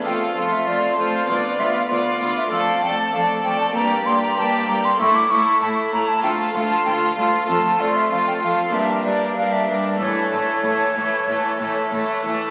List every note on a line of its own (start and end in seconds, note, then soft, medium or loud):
0.01 1.23 A3 soft
0.01 1.23 F4 soft
0.01 1.24 A4 soft
0.05 0.33 F2 soft
0.05 0.13 F2 soft
0.05 0.35 A3 soft
0.05 0.36 F4 soft
0.05 0.35 A4 soft
0.05 0.13 G5 medium
0.36 0.64 F2 soft
0.36 0.45 F2 soft
0.36 0.66 A3 soft
0.36 0.67 F4 soft
0.36 0.66 A4 soft
0.36 0.54 F5 medium
0.52 0.68 E5 medium
0.67 0.75 F2 soft
0.67 0.95 F2 soft
0.67 0.97 A3 soft
0.67 0.98 F4 soft
0.67 0.97 A4 soft
0.67 0.97 D5 medium
0.98 1.06 F2 soft
0.98 1.26 F2 soft
0.98 1.28 A3 soft
0.98 1.29 F4 soft
0.98 1.28 A4 soft
0.98 1.30 C5 medium
1.24 2.46 B3 soft
1.24 2.47 F4 soft
1.24 2.48 D5 soft
1.24 1.61 D5 medium
1.29 1.37 D2 medium
1.29 1.57 D2 soft
1.29 1.58 B3 soft
1.29 1.59 F4 soft
1.29 1.59 D5 soft
1.59 1.67 D2 soft
1.59 1.87 D2 soft
1.59 1.89 B3 soft
1.59 1.90 F4 soft
1.59 1.90 D5 soft
1.59 1.75 E5 medium
1.76 1.82 F5 medium
1.90 1.98 D2 medium
1.90 2.18 D2 soft
1.90 2.20 B3 soft
1.90 2.21 F4 medium
1.90 2.21 D5 soft
2.21 2.29 D2 medium
2.21 2.49 D2 soft
2.21 2.51 B3 soft
2.21 2.52 F4 soft
2.21 2.51 D5 soft
2.37 2.43 E5 medium
2.48 2.59 F2 medium
2.48 3.70 A3 soft
2.48 3.70 A4 soft
2.48 3.71 D5 soft
2.52 2.80 F2 soft
2.52 2.82 A3 medium
2.52 2.82 A4 soft
2.52 2.82 D5 medium
2.52 2.84 F5 medium
2.82 2.90 F2 medium
2.82 3.10 F2 soft
2.82 3.12 A3 soft
2.82 3.13 A4 soft
2.82 3.13 D5 soft
2.82 2.98 G5 medium
2.98 3.04 A5 medium
3.13 3.21 F2 medium
3.13 3.41 F2 soft
3.13 3.44 A3 soft
3.13 3.44 A4 soft
3.13 3.43 D5 soft
3.13 3.20 F5 medium
3.44 3.52 F2 medium
3.44 3.72 F2 soft
3.44 3.75 A3 soft
3.44 3.75 A4 soft
3.44 3.74 D5 soft
3.44 3.59 G5 medium
3.61 3.67 A5 medium
3.71 4.93 A#3 soft
3.71 4.94 G4 soft
3.71 4.95 D5 soft
3.75 3.83 G2 medium
3.75 4.03 G2 soft
3.75 4.05 A#3 medium
3.75 4.06 G4 soft
3.75 4.05 D5 soft
3.75 4.08 A#5 medium
4.06 4.14 G2 medium
4.06 4.34 G2 soft
4.06 4.36 A#3 soft
4.06 4.36 G4 soft
4.06 4.36 D5 soft
4.06 4.22 C6 medium
4.22 4.37 A#5 medium
4.37 4.65 G2 soft
4.37 4.45 G2 medium
4.37 4.67 A#3 soft
4.37 4.67 G4 medium
4.37 4.67 D5 soft
4.37 4.70 A5 medium
4.68 4.96 G2 soft
4.68 4.76 G2 medium
4.68 4.99 A#3 soft
4.68 4.99 G4 soft
4.68 4.99 D5 soft
4.68 4.87 A#5 medium
4.85 5.00 C6 medium
4.95 6.18 A3 soft
4.95 6.18 E4 soft
4.95 6.19 A4 soft
4.99 5.27 A2 soft
4.99 5.07 A2 medium
4.99 5.29 A3 medium
4.99 5.30 E4 medium
4.99 5.30 A4 medium
4.99 5.17 C#6 medium
5.16 5.32 D6 medium
5.30 5.58 A2 soft
5.30 5.38 A2 medium
5.30 5.60 A3 soft
5.30 5.61 E4 medium
5.30 5.61 A4 medium
5.30 5.61 C#6 medium
5.61 5.89 A2 soft
5.61 5.69 A2 medium
5.61 5.92 A3 medium
5.61 5.92 E4 soft
5.61 5.92 A4 soft
5.61 5.69 A5 medium
5.92 6.00 A2 medium
5.92 6.21 A2 soft
5.92 6.22 A3 soft
5.92 6.24 E4 soft
5.92 6.22 A4 soft
5.92 6.09 A#5 medium
6.08 6.23 A5 medium
6.19 7.42 A3 soft
6.19 7.43 F4 soft
6.19 7.44 A4 soft
6.23 6.31 D2 medium
6.23 6.52 D2 medium
6.23 6.54 A3 medium
6.23 6.55 F4 soft
6.23 6.53 A4 medium
6.23 6.30 G5 medium
6.54 6.63 D2 medium
6.54 6.83 D2 medium
6.54 6.85 A3 soft
6.54 6.86 F4 medium
6.54 6.85 A4 soft
6.54 6.61 F5 medium
6.71 6.85 A5 medium
6.85 7.14 D2 soft
6.85 6.94 D2 medium
6.85 7.16 A3 soft
6.85 7.17 F4 medium
6.85 7.16 A4 soft
6.85 6.93 G5 medium
7.17 7.45 D2 soft
7.17 7.25 D2 medium
7.17 7.48 A3 soft
7.17 7.47 F4 medium
7.17 7.48 A4 soft
7.17 7.33 F5 medium
7.44 8.68 A3 soft
7.44 8.68 F4 soft
7.44 8.69 A4 soft
7.48 7.77 F2 soft
7.48 7.57 F2 medium
7.48 7.79 A3 medium
7.48 7.79 F4 medium
7.48 7.78 A4 soft
7.48 7.82 A5 medium
7.79 8.08 F2 soft
7.79 7.88 F2 medium
7.79 8.09 A3 soft
7.79 8.10 F4 medium
7.79 8.10 A4 soft
7.79 7.97 D5 medium
7.96 8.10 E5 medium
8.11 8.39 F2 soft
8.11 8.19 F2 medium
8.11 8.41 A3 medium
8.11 8.41 F4 medium
8.11 8.41 A4 soft
8.11 8.17 F5 medium
8.27 8.33 G5 medium
8.42 8.70 F2 soft
8.42 8.50 F2 medium
8.42 8.73 A3 soft
8.42 8.73 F4 soft
8.42 8.73 A4 soft
8.42 8.76 F5 medium
8.68 9.93 A#3 soft
8.68 9.94 D4 soft
8.68 9.95 G4 soft
8.73 9.01 G2 soft
8.73 8.82 G2 medium
8.73 9.04 G3 medium
8.73 9.04 D4 soft
8.73 9.03 A#4 soft
8.73 9.04 E5 medium
9.05 9.33 G2 soft
9.05 9.13 G2 medium
9.05 9.35 G3 soft
9.05 9.35 D4 soft
9.05 9.34 A#4 soft
9.05 9.36 D5 medium
9.36 9.65 G2 soft
9.36 9.44 G2 medium
9.36 9.67 G3 soft
9.36 9.67 D4 medium
9.36 9.66 A#4 soft
9.36 9.54 F5 medium
9.52 9.86 E5 medium
9.67 9.96 G2 soft
9.67 9.76 G2 medium
9.67 9.99 G3 soft
9.67 9.99 D4 soft
9.67 9.99 A#4 soft
9.85 10.00 D5 medium
9.95 12.49 A3 soft
9.95 12.50 E4 soft
10.00 10.08 A2 medium
10.00 10.29 A2 soft
10.00 10.31 E3 medium
10.00 10.31 A3 medium
10.00 10.31 A4 soft
10.00 12.20 C#5 medium
10.32 10.40 A2 medium
10.32 10.61 A2 soft
10.32 10.62 E3 soft
10.32 10.63 A3 soft
10.32 10.63 A4 soft
10.64 10.72 A2 medium
10.64 10.93 A2 soft
10.64 10.95 E3 soft
10.64 10.95 A3 soft
10.64 10.95 A4 soft
10.96 11.04 A2 soft
10.96 11.25 A2 soft
10.96 11.27 E3 soft
10.96 11.28 A3 soft
10.96 11.27 A4 soft
11.28 11.36 A2 soft
11.28 11.57 A2 soft
11.28 11.59 E3 soft
11.28 11.60 A3 soft
11.28 11.59 A4 soft
11.60 11.89 A2 soft
11.60 11.68 A2 medium
11.60 11.91 E3 soft
11.60 11.91 A3 soft
11.60 11.91 A4 soft
11.92 12.00 A2 soft
11.92 12.21 A2 soft
11.92 12.23 E3 soft
11.92 12.23 A3 soft
11.92 12.23 A4 soft
12.24 12.32 A2 soft
12.24 12.50 A2 soft
12.24 12.50 E3 soft
12.24 12.50 A3 soft
12.24 12.50 A4 medium